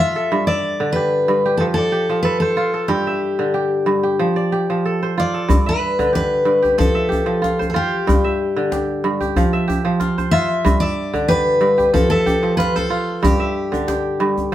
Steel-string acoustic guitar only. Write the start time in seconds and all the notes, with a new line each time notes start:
0.00 E5
0.47 D5
0.92 B4
1.57 A4
1.74 A4
2.23 B4
2.40 A4
2.88 G4
5.20 D5
5.69 B4
6.15 B4
6.78 A4
7.70 A4
7.76 G4
10.31 E5
10.80 D5
11.28 B4
11.94 A4
12.10 A4
12.57 B4
12.76 A4
13.25 G4